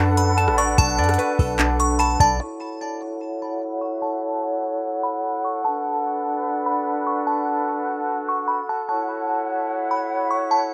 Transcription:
0.00 0.49 F#2 loud
0.00 1.19 D4 medium
0.00 2.37 D4 medium
0.00 2.37 F#4 medium
0.00 0.99 A4 medium
0.00 2.37 A4 medium
0.00 0.78 B4 medium
0.00 2.37 B4 medium
0.00 0.57 D5 medium
0.00 2.37 F#5 medium
0.00 0.13 A5 loud
0.00 0.36 A5 loud
0.17 0.56 B5 medium
0.17 closed hi-hat medium
0.38 0.77 A5 loud
0.38 closed hi-hat medium
0.48 0.77 A1 loud
0.48 cross-stick loud
0.58 0.98 D5 medium
0.58 0.77 C#6 medium
0.58 closed hi-hat medium
0.78 1.00 B1 loud
0.78 1.98 A5 loud
0.78 1.76 A5 loud
0.78 kick loud
0.78 closed hi-hat medium
0.98 1.18 F#2 loud
0.98 2.19 D5 medium
0.98 closed hi-hat soft
1.04 closed hi-hat medium
1.09 cross-stick medium
1.09 closed hi-hat medium
1.14 closed hi-hat medium
1.18 2.40 B4 medium
1.18 closed hi-hat medium
1.39 2.17 B1 loud
1.39 2.41 A4 medium
1.39 kick medium
1.39 open hi-hat soft
1.59 2.40 D4 medium
1.59 clap loud
1.59 closed hi-hat medium
1.80 1.99 C#6 medium
1.80 closed hi-hat medium
1.99 2.40 A5 medium
1.99 2.19 B5 medium
1.99 closed hi-hat medium
2.20 2.40 B1 loud
2.20 2.40 D5 medium
2.20 2.39 A5 medium
2.20 kick loud
2.20 closed hi-hat medium
2.40 5.61 E4 medium
2.40 5.61 F#4 medium
2.40 10.74 A4 medium
2.40 5.61 C#5 medium
2.40 8.63 F#5 medium
2.40 3.38 A5 medium
3.42 3.80 B5 medium
3.81 4.01 C#6 medium
4.02 5.00 A5 medium
5.03 5.42 B5 medium
5.45 5.64 C#6 medium
5.64 8.60 D4 medium
5.64 10.74 F#4 medium
5.64 8.59 B4 medium
5.64 6.62 A5 loud
6.66 7.04 B5 medium
7.07 7.26 C#6 medium
7.27 8.24 A5 loud
8.29 8.48 C#6 medium
8.48 8.67 B5 medium
8.69 8.88 A5 medium
8.89 10.74 E4 medium
8.89 10.74 C#5 medium
8.89 10.74 F#5 medium
8.89 9.86 A5 medium
9.91 10.29 B5 medium
10.31 10.50 C#6 medium
10.51 10.74 A5 medium

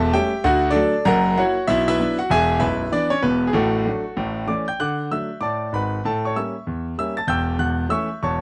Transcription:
0.00 0.14 E1 medium
0.00 0.15 E2 loud
0.00 0.12 A4 medium
0.00 0.12 E5 loud
0.00 0.14 A5 loud
0.13 0.31 G3 soft
0.13 0.31 A3 soft
0.13 0.31 C#4 medium
0.13 0.43 G4 medium
0.13 0.42 E5 medium
0.13 0.44 G5 loud
0.44 0.70 D2 medium
0.44 0.70 D3 loud
0.44 0.68 F#4 loud
0.44 0.69 F#5 loud
0.70 0.75 D4 medium
0.70 1.05 A4 medium
0.70 1.06 D5 loud
0.76 0.93 F#3 medium
0.76 0.93 A3 soft
0.76 0.93 D4 medium
1.05 1.32 F#1 loud
1.05 1.32 F#2 loud
1.05 1.36 A#4 loud
1.05 1.35 F#5 loud
1.05 1.37 A#5 loud
1.37 1.55 F#3 soft
1.37 1.55 A#3 medium
1.37 1.55 E4 medium
1.37 1.67 F#4 medium
1.37 1.67 C#5 medium
1.37 1.68 F#5 loud
1.67 1.94 B1 medium
1.67 1.94 B2 loud
1.67 1.87 E4 loud
1.67 1.86 E5 loud
1.88 2.17 E4 medium
1.88 2.17 B4 medium
1.88 2.19 E5 loud
2.00 2.17 F#3 soft
2.00 2.17 B3 medium
2.00 2.17 D4 medium
2.19 2.30 F#4 medium
2.19 2.30 F#5 loud
2.30 2.55 E1 loud
2.30 2.55 E2 medium
2.30 2.60 G#4 loud
2.30 2.58 E5 loud
2.30 2.62 G#5 loud
2.59 2.85 B0 medium
2.59 2.85 B1 medium
2.59 2.90 E4 medium
2.59 2.90 B4 medium
2.59 2.92 E5 loud
2.92 3.09 E3 medium
2.92 3.09 B3 medium
2.92 3.11 D4 medium
2.92 3.12 D5 loud
3.10 3.22 C#4 medium
3.10 3.23 C#5 loud
3.22 3.48 E1 medium
3.22 3.48 E2 medium
3.22 3.48 B3 medium
3.22 3.49 B4 loud
3.47 3.53 G#4 medium
3.53 3.81 A1 medium
3.53 3.80 A2 loud
3.53 3.84 A3 medium
3.53 4.45 F#4 medium
3.53 4.48 A4 medium
3.85 4.02 F#3 soft
3.85 4.03 A3 soft
3.85 4.03 D4 soft
4.17 4.43 A1 medium
4.17 4.43 A2 medium
4.47 4.64 E3 soft
4.47 4.65 A3 soft
4.47 4.65 C#4 medium
4.47 4.67 D5 medium
4.47 4.68 D6 medium
4.68 4.79 G5 medium
4.68 4.79 G6 medium
4.80 5.06 D3 medium
4.80 5.09 F#5 medium
4.80 5.09 D6 medium
4.80 5.11 F#6 medium
5.11 5.28 F#3 soft
5.11 5.29 A3 soft
5.11 5.29 D4 soft
5.11 5.41 E5 medium
5.11 5.42 E6 medium
5.41 5.68 A2 medium
5.41 5.71 D5 medium
5.41 5.71 A5 medium
5.41 5.72 D6 medium
5.73 5.98 G#1 medium
5.73 5.98 G#2 medium
5.73 6.03 B4 medium
5.73 6.03 F#5 medium
5.73 6.04 B5 medium
6.05 6.31 A2 medium
6.05 6.23 A4 medium
6.05 6.24 A5 medium
6.25 6.36 C#5 medium
6.25 6.36 C#6 medium
6.36 6.53 G3 soft
6.36 6.53 A#3 soft
6.36 6.53 C#4 soft
6.36 6.84 E5 soft
6.36 6.84 C#6 soft
6.36 6.87 E6 medium
6.67 6.93 E2 medium
6.98 7.15 G3 soft
6.98 7.16 A#3 soft
6.98 7.16 C#4 soft
6.98 7.17 E5 medium
6.98 7.18 E6 medium
7.17 7.28 A5 medium
7.17 7.29 A6 medium
7.27 7.53 E1 medium
7.27 7.53 E2 medium
7.27 7.58 G5 medium
7.27 7.58 E6 medium
7.27 7.60 G6 loud
7.58 7.84 E1 medium
7.58 7.84 E2 medium
7.58 7.89 F#5 medium
7.58 7.91 F#6 medium
7.89 8.07 E3 soft
7.89 8.07 A3 soft
7.89 8.07 C#4 soft
7.89 8.20 E5 medium
7.89 8.21 C#6 medium
7.89 8.22 E6 loud
8.23 8.41 E1 medium
8.23 8.41 E2 medium
8.23 8.41 C#5 medium
8.23 8.41 A5 medium
8.23 8.41 C#6 medium

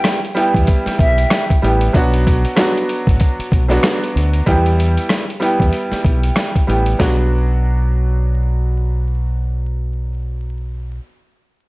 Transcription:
0.00 0.15 G3 medium
0.00 0.16 B3 medium
0.00 0.16 E4 medium
0.00 0.17 G4 loud
0.00 0.20 G5 medium
0.00 cross-stick medium
0.05 snare loud
0.05 closed hi-hat medium
0.25 closed hi-hat soft
0.35 1.53 G3 medium
0.35 1.54 B3 medium
0.35 1.54 E4 medium
0.35 1.54 G4 loud
0.35 closed hi-hat medium
0.54 0.65 E2 medium
0.54 kick medium
0.54 closed hi-hat medium
0.67 kick medium
0.67 closed hi-hat medium
0.86 muted fingered electric bass stroke soft
0.86 snare soft
0.86 closed hi-hat medium
0.99 1.24 B1 medium
0.99 1.46 E5 medium
0.99 kick loud
0.99 closed hi-hat medium
1.18 closed hi-hat medium
1.30 cross-stick medium
1.30 snare loud
1.30 closed hi-hat medium
1.50 kick loud
1.50 closed hi-hat medium
1.62 1.88 A1 medium
1.62 1.92 G3 medium
1.62 1.92 B3 medium
1.62 1.93 E4 medium
1.62 1.93 G4 medium
1.62 closed hi-hat medium
1.81 closed hi-hat medium
1.93 2.44 B1 loud
1.93 2.53 F#3 medium
1.93 2.53 B3 medium
1.93 2.54 D4 medium
1.93 2.54 F#4 loud
1.93 kick loud
1.93 closed hi-hat medium
2.14 closed hi-hat medium
2.27 kick loud
2.27 closed hi-hat medium
2.45 closed hi-hat medium
2.56 3.59 F#3 medium
2.56 3.60 B3 medium
2.56 3.60 D4 medium
2.56 3.61 F#4 loud
2.56 cross-stick medium
2.56 snare loud
2.56 closed hi-hat medium
2.77 closed hi-hat soft
2.89 closed hi-hat medium
3.07 3.18 A1 medium
3.07 kick medium
3.07 closed hi-hat medium
3.20 kick medium
3.20 closed hi-hat medium
3.39 muted fingered electric bass stroke soft
3.39 closed hi-hat medium
3.52 3.77 B1 medium
3.52 kick medium
3.52 closed hi-hat medium
3.68 4.41 F#3 medium
3.68 4.41 B3 medium
3.68 4.42 D4 medium
3.68 4.42 F#4 loud
3.68 snare soft
3.68 closed hi-hat medium
3.83 cross-stick medium
3.83 snare loud
3.83 closed hi-hat medium
4.03 closed hi-hat soft
4.16 4.40 D2 loud
4.16 closed hi-hat medium
4.33 closed hi-hat medium
4.46 4.96 E2 loud
4.46 5.21 G3 medium
4.46 5.21 B3 medium
4.46 5.21 E4 medium
4.46 5.22 G4 loud
4.46 kick loud
4.46 closed hi-hat medium
4.66 closed hi-hat medium
4.80 closed hi-hat medium
4.97 closed hi-hat medium
5.09 cross-stick medium
5.09 snare loud
5.09 closed hi-hat medium
5.30 closed hi-hat soft
5.40 6.58 G3 medium
5.40 6.59 B3 medium
5.40 6.59 E4 medium
5.40 6.60 G4 medium
5.40 closed hi-hat medium
5.60 5.70 E2 medium
5.60 kick medium
5.60 closed hi-hat medium
5.73 closed hi-hat medium
5.92 muted fingered electric bass stroke soft
5.92 snare soft
5.92 closed hi-hat medium
6.04 6.29 B1 medium
6.04 kick medium
6.04 closed hi-hat medium
6.23 closed hi-hat medium
6.36 cross-stick medium
6.36 snare loud
6.36 closed hi-hat medium
6.56 kick medium
6.56 closed hi-hat soft
6.67 6.93 A1 medium
6.67 6.97 G3 medium
6.67 6.97 B3 medium
6.67 6.98 E4 medium
6.67 6.98 G4 medium
6.67 closed hi-hat medium
6.86 closed hi-hat medium
6.99 10.98 B1 medium
6.99 10.98 F#3 medium
6.99 10.98 B3 medium
6.99 10.98 D4 medium
6.99 10.98 F#4 medium
6.99 kick loud
6.99 snare medium

